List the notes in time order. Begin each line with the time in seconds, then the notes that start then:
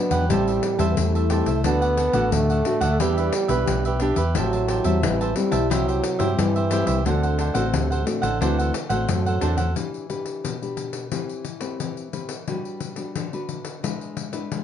Already playing: D3 F#3 B3 D4
0.11 E2 G4 B4 F#5, pandeiro
0.29 A1 A2 G3 C4 E4 G4 C5 E5 A5, pandeiro
0.48 C5 E5 A5, pandeiro
0.63 muted cavaquinho stroke, pandeiro
0.79 E2 G3 C4 E4 C5 E5 A5, pandeiro
0.91 B3
0.97 E2 E3 A3, pandeiro
1.15 C5 E5 A5, pandeiro
1.30 G3 C4 E4 G4 C5 E5 A5, pandeiro
1.46 C2 C5 E5 A5, pandeiro
1.64 D2 D3 A3 B3 D4 F#4 A4 D5 F#5, pandeiro
1.81 A4 D5 F#5, pandeiro
1.97 D4 A4 D5 F#5, pandeiro
2.13 A1 A3 D4 F#4 A4 D5 F#5, pandeiro
2.32 D2 A2 A3, pandeiro
2.50 A4 D5 F#5, pandeiro
2.65 A3 D4 F#4, muted cavaquinho stroke, pandeiro
2.81 D2 A4 D5 F#5, pandeiro
3.00 E2 E3 G3 B3 D4 G4 B4 E5, pandeiro
3.17 G4 B4 E5, pandeiro
3.33 muted cavaquinho stroke, pandeiro
3.48 B1 B3 D4 G4 B4 E5, pandeiro
3.67 B1 B2, pandeiro
3.85 G4 B4 E5, pandeiro
4.00 B3 D4 G4 B4 E5, pandeiro
4.16 E2 G4 B4 E5, pandeiro
4.35 A1 A2 F#3 C4 E4 G4 C5 E5 A5, pandeiro
4.53 C5 E5 A5, pandeiro
4.68 G4 C5 E5 A5, pandeiro
4.84 E2 G3 C4 E4 C5 E5 A5, pandeiro
5.03 A1 E3, pandeiro
5.21 C5 E5 A5, pandeiro
5.36 G3 C4 E4, muted cavaquinho stroke, pandeiro
5.51 B1 C5 E5 A5, pandeiro
5.70 C2 C3 F#3 C4 E4 G4 C5 E5, pandeiro
5.88 G4 C5 E5, pandeiro
6.03 muted cavaquinho stroke, pandeiro
6.19 G2 G3 C4 E4 G4 C5 E5, pandeiro
6.38 G2 E3 G3, pandeiro
6.56 G4 C5 E5, pandeiro
6.71 G3 C4 E4 G4 C5 E5, pandeiro
6.86 C2 G4 C5 E5, pandeiro
7.05 D2 D3 A3 C4 D4 F#4 A4 C5 F#5, pandeiro
7.23 A4 C5 F#5, pandeiro
7.39 D4 A4 C5 F#5, pandeiro
7.54 A1 A3 C4 F#4 A4 C5 F#5, pandeiro
7.67 B2
7.73 D2 A2 C3, pandeiro
7.91 A4 C5 F#5, pandeiro
8.06 D3 A3 C4 F#4, muted cavaquinho stroke, pandeiro
8.22 A1 A4 C5 F#5, pandeiro
8.41 D2 D3 E3 A3 C4 D4 F#4 A4 C5 F#5, pandeiro
8.58 A4 C5 F#5, pandeiro
8.74 muted cavaquinho stroke, pandeiro
8.89 A1 A3 C4 F#4 A4 C5 F#5, pandeiro
9.09 F#2 A2 F#3, pandeiro
9.26 A4 C5 F#5, pandeiro
9.41 E2 A3 C4 D4 F#4 A4 C5 F#5, pandeiro
9.57 A4 C5 F#5, pandeiro
9.76 E3 D4 G4 B4, pandeiro
9.94 pandeiro
10.09 D4 G4 B4, pandeiro
10.26 pandeiro
10.44 B2, pandeiro
10.62 D4 G4 B4, pandeiro
10.77 pandeiro
10.93 pandeiro
11.12 E3 C4 G4 B4, pandeiro
11.29 pandeiro
11.45 pandeiro
11.61 C4 G4 B4, pandeiro
11.80 E3, pandeiro
11.97 pandeiro
12.13 C4 G4 B4, pandeiro
12.29 pandeiro
12.48 G3 D4 F#4 B4, pandeiro
12.65 pandeiro
12.80 pandeiro
12.96 D4 F#4 B4, pandeiro
13.15 D3, pandeiro
13.33 D4 F#4 B4, pandeiro
13.49 pandeiro
13.65 pandeiro
13.83 G#3 D4 E4 B4, pandeiro
14.01 pandeiro
14.17 pandeiro
14.33 D4 E4 B4, pandeiro
14.52 G#3, pandeiro